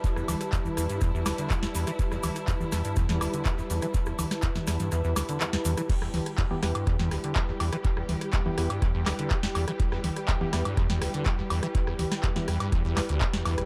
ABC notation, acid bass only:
X:1
M:4/4
L:1/16
Q:1/4=123
K:Em
V:1 name="Acid bass" clef=bass
z E,, D,, z E,, E,, E,, G,, E,, E,, D,, D, z E,, E,, E, | z E,, D,, z E,, E,, E,, G,, E,, E,, D,, D, E, E,, E,, E, | z E,, D,, z E,, E,, E,, G,, E,, E,, D,, D, E, E,, E,, E, | z E,, D,, z E,, E,, E,, G,, E,, E,, D,, D, E, E,, E,, E, |
z E,, D,, z E,, E,, E,, G,, E,, E,, D,, D, E, E,, E,, E, | z E,, D,, z E,, E,, E,, G,, E,, E,, D,, D, z E,, E,, E, | z E,, D,, z E,, E,, E,, G,, E,, E,, E,, D,, G,, E,, E,, E,,, |]